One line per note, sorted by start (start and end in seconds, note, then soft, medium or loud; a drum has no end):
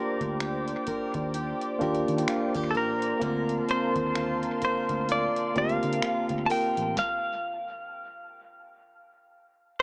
0.00 0.84 A#3 medium
0.00 0.85 D4 medium
0.00 3.44 D4 medium
0.00 0.85 F4 medium
0.00 0.86 G4 medium
0.00 0.37 A#4 medium
0.00 0.87 A#4 medium
0.00 3.18 C5 medium
0.00 3.18 D5 medium
0.00 3.18 G5 medium
0.00 3.17 D6 medium
0.21 0.74 D2 medium
0.21 kick medium
0.21 closed hi-hat soft
0.40 1.34 G4 medium
0.40 finger snap loud
0.40 closed hi-hat medium
0.68 closed hi-hat soft
0.87 1.81 A#4 medium
0.87 muted fingered electric bass stroke soft
0.87 kick medium
0.87 closed hi-hat medium
1.14 1.52 D#2 medium
1.14 kick medium
1.14 closed hi-hat soft
1.34 2.28 G4 medium
1.34 closed hi-hat medium
1.61 closed hi-hat medium
1.79 2.03 D#2 medium
1.79 2.85 A#3 medium
1.79 2.85 D4 medium
1.79 2.86 F4 medium
1.79 2.86 G4 loud
1.79 2.74 A#4 medium
1.79 kick medium
1.79 closed hi-hat soft
1.95 closed hi-hat medium
2.08 2.24 D#3 medium
2.08 closed hi-hat medium
2.18 closed hi-hat medium
2.28 2.55 F4 medium
2.28 finger snap loud
2.28 closed hi-hat medium
2.55 2.75 D#2 medium
2.55 3.33 G4 medium
2.55 kick medium
2.55 closed hi-hat soft
2.71 2.76 A4 medium
2.75 3.13 A1 medium
2.75 3.22 A#4 medium
2.75 3.66 A#4 medium
3.02 closed hi-hat medium
3.20 3.59 D2 loud
3.20 6.97 D3 medium
3.20 4.59 A#3 medium
3.20 4.59 C4 medium
3.20 4.60 F4 medium
3.20 6.92 A#4 medium
3.20 4.61 A#4 medium
3.20 4.60 A#4 medium
3.20 6.92 F5 medium
3.20 6.93 A5 medium
3.20 6.93 C6 medium
3.20 kick loud
3.20 closed hi-hat medium
3.49 closed hi-hat soft
3.68 7.18 C4 medium
3.68 4.63 C5 medium
3.68 closed hi-hat medium
3.96 4.49 D#2 medium
3.96 kick medium
3.96 closed hi-hat medium
4.15 5.09 F4 medium
4.15 finger snap loud
4.15 closed hi-hat medium
4.43 closed hi-hat soft
4.62 5.55 A#4 medium
4.62 5.07 C5 medium
4.62 muted fingered electric bass stroke soft
4.62 kick medium
4.62 closed hi-hat medium
4.89 5.27 D2 medium
4.89 kick medium
4.89 closed hi-hat medium
5.09 6.02 F4 medium
5.09 5.58 D5 loud
5.09 closed hi-hat medium
5.36 closed hi-hat medium
5.54 5.78 D2 loud
5.54 6.60 A#3 medium
5.54 6.60 C4 medium
5.54 6.61 F4 medium
5.54 6.62 G4 medium
5.54 6.48 A#4 medium
5.54 6.46 F5 loud
5.54 kick medium
5.54 closed hi-hat soft
5.69 closed hi-hat soft
5.83 5.99 D3 medium
5.83 closed hi-hat medium
5.93 closed hi-hat medium
6.02 7.57 F4 medium
6.02 finger snap loud
6.02 muted fingered electric bass stroke soft
6.02 closed hi-hat medium
6.29 6.46 D2 medium
6.29 kick medium
6.29 closed hi-hat soft
6.46 7.07 A#4 medium
6.46 6.51 A5 medium
6.46 open hi-hat medium
6.51 6.98 G5 loud
6.77 6.93 A1 medium
6.77 closed hi-hat medium
6.97 9.75 F5 medium
6.97 kick loud
6.97 snare medium